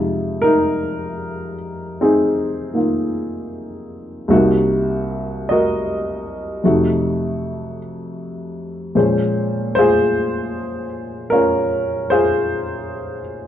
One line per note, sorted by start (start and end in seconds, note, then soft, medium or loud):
0.00 4.26 F2 soft
0.00 4.28 C3 soft
0.00 4.30 G#3 soft
0.00 0.42 D#4 soft
0.00 2.75 F4 soft
0.42 2.00 D#4 medium
0.42 1.54 A#4 medium
2.01 4.28 C4 soft
2.01 4.28 D#4 soft
2.01 4.29 G#4 medium
2.74 4.28 D#3 soft
2.74 4.29 A#3 soft
2.74 4.30 F4 soft
4.28 6.62 C2 soft
4.28 6.63 C3 soft
4.28 4.32 A#3 soft
4.28 6.63 D#4 soft
4.28 5.50 F#4 medium
4.34 6.61 A#3 soft
5.49 6.64 F#4 medium
5.49 6.61 A#4 medium
5.49 7.76 D#5 medium
6.64 8.95 F2 soft
6.64 8.96 C3 soft
6.64 8.96 A3 soft
6.64 8.96 D#4 soft
6.64 8.96 F#4 medium
8.95 13.47 A#2 soft
8.95 13.47 F3 soft
8.95 13.47 G#3 soft
8.95 11.31 C#4 soft
8.95 9.74 C5 medium
9.75 11.31 F4 medium
9.75 12.04 G#4 medium
9.75 10.86 C5 medium
11.30 13.47 C#4 medium
11.30 12.10 F4 medium
11.30 12.09 A#4 medium
12.10 13.47 F4 medium
12.10 13.47 G#4 medium
12.10 13.20 C5 medium